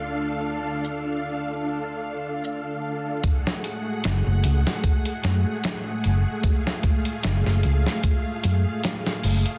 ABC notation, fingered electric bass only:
X:1
M:4/4
L:1/16
Q:"Swing 16ths" 1/4=75
K:F#m
V:1 name="Fingered electric bass" clef=bass
D,,16 | z4 F,,, F,,, C,, z3 F,, z3 F,,, z | z4 F,,, F,,, C,, z3 F,, z3 F,,, z |]